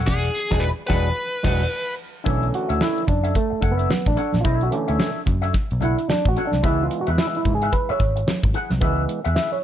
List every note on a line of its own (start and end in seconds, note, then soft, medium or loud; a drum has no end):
0.07 0.28 E1 loud
0.07 0.27 E4 loud
0.07 0.64 G#4 medium
0.07 0.27 G#4 loud
0.07 0.28 D5 loud
0.07 0.28 F#5 loud
0.07 kick loud
0.07 snare loud
0.07 crash medium
0.50 0.69 E1 loud
0.50 0.69 F#3 medium
0.50 0.69 G#3 medium
0.50 0.69 D4 loud
0.50 0.70 E4 medium
0.50 0.69 G#4 loud
0.50 0.69 D5 loud
0.50 0.69 G#5 loud
0.50 kick loud
0.50 snare medium
0.60 0.68 B4 loud
0.87 1.10 E1 loud
0.87 1.09 F#3 loud
0.87 1.09 G#3 medium
0.87 1.09 D4 loud
0.87 1.10 E4 loud
0.87 1.09 G#4 loud
0.87 1.93 B4 loud
0.87 1.09 D5 medium
0.87 1.08 F#5 loud
0.87 kick loud
0.87 snare loud
1.43 1.64 E1 loud
1.43 1.63 F#3 loud
1.43 1.63 G#3 loud
1.43 1.64 D4 loud
1.43 1.64 E4 loud
1.43 1.64 G#4 medium
1.43 1.64 D5 loud
1.43 1.64 F#5 loud
1.43 kick loud
1.43 snare loud
1.43 crash medium
2.24 2.50 B1 loud
2.24 3.04 D3 medium
2.24 3.04 E3 medium
2.24 3.04 A3 medium
2.24 3.04 C#4 medium
2.24 2.44 D4 medium
2.24 2.45 A4 medium
2.24 2.45 C#5 loud
2.24 2.46 E5 loud
2.24 kick loud
2.24 closed hi-hat medium
2.24 muted conga medium
2.43 closed hi-hat soft
2.52 2.82 F#4 medium
2.52 muted clean electric guitar stroke soft
2.52 closed hi-hat medium
2.69 2.79 D2 medium
2.69 2.79 D4 soft
2.69 2.80 A4 medium
2.69 2.80 C#5 medium
2.69 2.80 E5 medium
2.69 closed hi-hat medium
2.80 3.00 D4 medium
2.80 3.07 E4 loud
2.80 3.00 A4 medium
2.80 3.00 C#5 medium
2.80 3.01 E5 loud
2.80 snare loud
2.80 high conga medium
2.98 closed hi-hat soft
3.07 3.32 F#2 loud
3.07 3.37 D4 medium
3.07 muted clean electric guitar stroke soft
3.07 kick medium
3.07 closed hi-hat medium
3.07 low conga medium
3.23 3.33 D4 soft
3.23 3.33 A4 medium
3.23 3.34 C#5 medium
3.23 3.34 E5 medium
3.23 closed hi-hat medium
3.34 3.73 A3 medium
3.34 muted clean electric guitar stroke soft
3.34 kick medium
3.34 closed hi-hat medium
3.34 muted conga soft
3.50 muted clean electric guitar stroke soft
3.50 muted picked electric bass stroke soft
3.61 3.86 F#1 medium
3.61 3.78 D4 medium
3.61 3.77 A4 medium
3.61 3.77 C#5 medium
3.61 3.77 F#5 medium
3.61 kick medium
3.61 closed hi-hat medium
3.61 muted conga soft
3.71 4.09 B3 medium
3.77 3.88 D4 medium
3.77 3.89 A4 medium
3.77 3.89 C#5 medium
3.77 3.89 E5 medium
3.77 closed hi-hat medium
3.89 muted clean electric guitar stroke soft
3.89 muted picked electric bass stroke medium
3.89 snare loud
3.89 high conga medium
4.06 4.16 A1 medium
4.06 4.42 D4 loud
4.06 kick medium
4.06 closed hi-hat soft
4.16 4.33 D4 medium
4.16 4.33 A4 medium
4.16 4.32 C#5 medium
4.16 4.32 F#5 medium
4.16 closed hi-hat medium
4.33 4.43 A#1 medium
4.33 muted clean electric guitar stroke soft
4.33 snare soft
4.33 closed hi-hat soft
4.33 high conga medium
4.41 4.66 D4 medium
4.41 4.63 E4 medium
4.41 4.45 F4 medium
4.41 4.66 A4 medium
4.41 muted conga medium
4.45 4.68 B1 loud
4.45 4.67 C#5 medium
4.45 4.67 E5 medium
4.45 kick loud
4.45 closed hi-hat medium
4.61 4.75 F#4 medium
4.61 closed hi-hat soft
4.71 5.10 D3 medium
4.71 5.10 E3 soft
4.71 5.11 A3 medium
4.71 5.11 C#4 medium
4.71 closed hi-hat medium
4.88 4.98 D2 medium
4.88 4.97 D4 soft
4.88 4.98 A4 soft
4.88 4.99 C#5 medium
4.88 4.99 E5 medium
4.88 closed hi-hat soft
4.98 5.18 D4 medium
4.98 5.19 A4 medium
4.98 5.19 C#5 loud
4.98 5.19 E5 medium
4.98 snare loud
4.98 high conga medium
5.26 5.50 F#2 medium
5.26 muted clean electric guitar stroke soft
5.26 kick medium
5.26 closed hi-hat medium
5.26 low conga medium
5.42 5.52 D4 medium
5.42 5.53 A4 medium
5.42 5.53 C#5 medium
5.42 5.53 E5 medium
5.42 closed hi-hat medium
5.53 muted clean electric guitar stroke soft
5.53 muted picked electric bass stroke soft
5.53 kick loud
5.53 snare soft
5.53 closed hi-hat medium
5.53 muted conga soft
5.71 5.95 B1 medium
5.71 closed hi-hat soft
5.81 5.97 D4 medium
5.81 6.08 E4 medium
5.81 5.97 A4 medium
5.81 5.97 C#5 medium
5.81 5.97 F#5 medium
5.81 closed hi-hat medium
5.81 muted conga soft
5.81 low conga medium
5.97 muted clean electric guitar stroke medium
5.97 closed hi-hat medium
6.08 6.28 D4 medium
6.08 muted clean electric guitar stroke soft
6.08 muted picked electric bass stroke medium
6.08 snare loud
6.08 high conga medium
6.25 6.35 A1 loud
6.25 6.45 F#4 medium
6.25 kick medium
6.36 6.52 D4 medium
6.36 6.52 A4 medium
6.36 6.51 C#5 medium
6.36 6.52 F#5 medium
6.36 closed hi-hat medium
6.47 6.65 D4 medium
6.52 6.62 C2 medium
6.52 muted clean electric guitar stroke medium
6.52 snare soft
6.52 closed hi-hat soft
6.52 high conga medium
6.63 6.87 C#2 loud
6.63 8.78 E3 medium
6.63 8.78 G#3 medium
6.63 8.79 B3 medium
6.63 6.82 E4 medium
6.63 6.83 E4 medium
6.63 6.83 G#4 loud
6.63 6.83 B4 loud
6.63 6.83 E5 loud
6.63 kick loud
6.63 closed hi-hat loud
6.83 6.99 F4 medium
6.91 muted clean electric guitar stroke soft
6.91 closed hi-hat medium
7.01 7.09 F#4 medium
7.07 7.17 E2 loud
7.07 7.16 E4 medium
7.07 7.17 G#4 medium
7.07 7.17 B4 medium
7.07 7.18 E5 medium
7.07 closed hi-hat medium
7.18 7.37 E4 medium
7.18 7.27 E4 medium
7.18 7.37 G#4 medium
7.18 7.38 B4 medium
7.18 7.38 E5 medium
7.18 snare loud
7.18 high conga medium
7.35 7.53 E4 medium
7.35 closed hi-hat soft
7.45 7.69 G#2 medium
7.45 muted clean electric guitar stroke soft
7.45 kick medium
7.45 closed hi-hat medium
7.45 low conga medium
7.55 7.73 G#4 medium
7.62 7.72 E4 medium
7.62 7.73 G#4 medium
7.62 7.73 B4 medium
7.62 7.73 E5 medium
7.62 closed hi-hat medium
7.72 7.91 B4 loud
7.72 muted clean electric guitar stroke soft
7.72 kick medium
7.72 closed hi-hat medium
7.72 muted conga medium
7.89 8.00 E4 medium
7.89 8.00 G#4 medium
7.89 8.01 B4 medium
7.89 8.42 C#5 loud
7.89 8.01 E5 medium
7.89 muted picked electric bass stroke medium
8.00 8.23 G#1 medium
8.00 muted clean electric guitar stroke soft
8.00 kick medium
8.00 closed hi-hat medium
8.16 muted clean electric guitar stroke soft
8.16 closed hi-hat medium
8.27 muted clean electric guitar stroke soft
8.27 snare loud
8.27 high conga medium
8.43 8.53 G#1 loud
8.43 kick loud
8.54 8.71 E4 medium
8.54 8.71 G#4 medium
8.54 8.70 B4 medium
8.54 8.70 F#5 medium
8.54 closed hi-hat medium
8.70 8.81 C2 medium
8.70 muted clean electric guitar stroke soft
8.70 snare soft
8.70 closed hi-hat soft
8.70 high conga medium
8.81 9.05 C#2 loud
8.81 9.20 E3 medium
8.81 9.20 G#3 medium
8.81 9.20 B3 medium
8.81 9.01 E4 medium
8.81 9.01 G#4 loud
8.81 9.01 B4 loud
8.81 9.01 E5 loud
8.81 kick loud
8.81 closed hi-hat medium
8.81 muted conga medium
9.08 muted clean electric guitar stroke soft
9.08 closed hi-hat medium
9.24 9.35 E2 medium
9.24 9.35 E4 soft
9.24 9.35 G#4 medium
9.24 9.36 B4 medium
9.24 9.36 E5 medium
9.24 closed hi-hat medium
9.35 9.55 E4 medium
9.35 9.56 G#4 medium
9.35 9.56 B4 medium
9.35 9.51 E5 loud
9.35 9.56 E5 medium
9.35 snare loud
9.35 high conga medium
9.52 9.64 C#5 medium